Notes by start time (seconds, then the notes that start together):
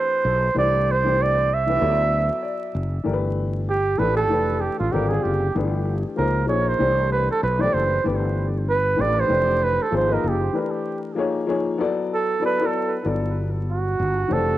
Already playing: E3 A3 C4 D4 G4 C5
0.25 B1
0.55 C2 E3 A3 D4 G4 C5
0.59 D5
0.91 C5
1.04 E3 A3 D4 G4 C5
1.22 D5
1.54 E5
1.66 E3 A3 D4 G4 B4
1.79 D2 F#3 B3 E4 A4 C#5
1.89 D5
2.43 D5
2.75 F#1
3.03 G1 E3 A3 D4 G4 A#4
3.13 B4
3.70 G4
3.98 A1 E3 A3 D4 G4 A4 B4
4.17 A4
4.29 F1 E3 A3 D4 G4 B4
4.61 G4
4.79 A1 F4
4.91 G#1 D3 G3 C4 F4 G4 A#4
5.09 D3 C4 F4 G4 G#4
5.23 F#1 G4
5.54 G1 E3 A3 D4 G4 B4
6.16 C#2 F3 A#3 D#4 G#4 A#4 C5
6.47 A#1 F3 A#3 D#4 G#4 C5 C#5
6.68 C5
6.78 C2 E3 A3 D4 G4 C5
7.12 B4
7.31 A4
7.43 B1 B4
7.59 E3 A3 D4 G4 C5 D5
7.74 F#1 C5
8.04 G1 E3 A3 D4 G4 B4
8.70 B4
8.96 A1 E3 A3 D4 G4 B4
9.01 D5
9.20 C5
9.28 F1 E3 A3 D4 G4 C5
9.64 B4
9.82 A4
9.91 G#1 F3 A#3 D#4 G#4 C5
9.96 C5
10.08 F3 A#3 D#4 G#4 D#5
10.13 A#4
10.24 F#1
10.28 G4
10.52 E3 A3 D4 G4 B4
11.15 F3 A#3 D#4 G#4 C#5
11.47 F3 A#3 D#4 G#4 C#5
11.78 F#3 B3 E4 A4 D5
12.14 A4
12.39 F#3 B3 E4 A4 D5
12.45 B4
12.59 F#3 B3 E4 A4 D5
12.66 A4
13.03 G1 F#3 B3 E4 A4 D5
13.70 F#4
14.00 G1
14.28 F1 E3 A3 D4 G4 C5
14.33 A4